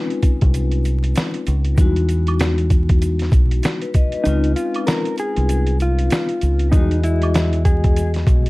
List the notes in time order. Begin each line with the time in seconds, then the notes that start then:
Already playing: G#3 C4 C#4 D#4 F4
0.10 closed hi-hat
0.23 kick, closed hi-hat, shaker
0.41 C2, kick, closed hi-hat
0.54 closed hi-hat, shaker
0.71 closed hi-hat
0.85 closed hi-hat, shaker
1.04 closed hi-hat
1.16 snare, closed hi-hat, shaker
1.34 closed hi-hat
1.47 C#2, closed hi-hat, shaker
1.65 closed hi-hat
1.75 E2 G3 B3 D#4, kick, closed hi-hat, shaker
1.79 G#3 E4 F#4
1.96 closed hi-hat
2.09 closed hi-hat, shaker
2.27 closed hi-hat, high woodblock
2.39 snare, closed hi-hat, shaker
2.58 closed hi-hat
2.70 kick, closed hi-hat, shaker
2.89 kick, closed hi-hat
3.02 closed hi-hat, shaker
3.19 snare, closed hi-hat
3.32 B1, kick, closed hi-hat, shaker
3.51 closed hi-hat
3.63 snare, closed hi-hat, shaker
3.82 B4, closed hi-hat
3.94 D#5, kick, closed hi-hat, shaker
4.12 B4, closed hi-hat
4.23 C#2 G#3 C4 C#4 D#4, closed hi-hat, shaker
4.27 D#4 F4
4.44 closed hi-hat
4.56 F4, closed hi-hat, shaker
4.74 closed hi-hat, high woodblock
4.87 A#4, snare, closed hi-hat, shaker
5.05 closed hi-hat
5.18 G#4, closed hi-hat, shaker
5.36 C2, closed hi-hat
5.49 closed hi-hat, shaker
5.67 closed hi-hat
5.80 F4, closed hi-hat, shaker
5.99 closed hi-hat
6.10 snare, closed hi-hat, shaker
6.29 closed hi-hat
6.41 C#2, closed hi-hat, shaker
6.59 closed hi-hat
6.70 E2 G3 B3 D#4 D#5, kick, closed hi-hat, shaker
6.74 G#3 F#4 G#4
6.91 closed hi-hat
7.04 E4, closed hi-hat, shaker
7.22 closed hi-hat, high woodblock
7.34 snare, closed hi-hat, shaker
7.53 closed hi-hat
7.65 G#4, kick, closed hi-hat, shaker
7.84 kick, closed hi-hat
7.96 closed hi-hat, shaker
8.14 snare, closed hi-hat
8.27 B1, kick, closed hi-hat, shaker
8.46 closed hi-hat